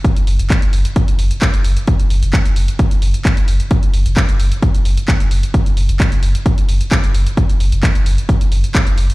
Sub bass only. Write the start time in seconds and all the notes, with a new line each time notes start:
0.17 F#1
0.27 F#1
0.39 F#1
0.62 F#1
0.73 F#1
1.08 F#1
1.19 F#1
1.54 F#1
1.65 F#1
2.00 F#1
2.10 F#1
2.23 F#1
2.46 F#1
2.56 F#1
2.91 F#1
3.02 F#1
3.37 F#1
3.48 F#1
3.83 F#1
3.94 F#1
4.06 F#1
4.29 F#1
4.40 F#1
4.75 F#1
4.85 F#1
5.21 F#1
5.31 F#1
5.66 F#1
5.77 F#1
5.89 F#1
6.12 F#1
6.23 F#1
6.58 F#1
6.69 F#1
7.04 F#1
7.14 F#1
7.49 F#1
7.60 F#1
7.72 F#1
7.95 F#1
8.06 F#1
8.41 F#1
8.52 F#1
8.87 F#1
8.98 F#1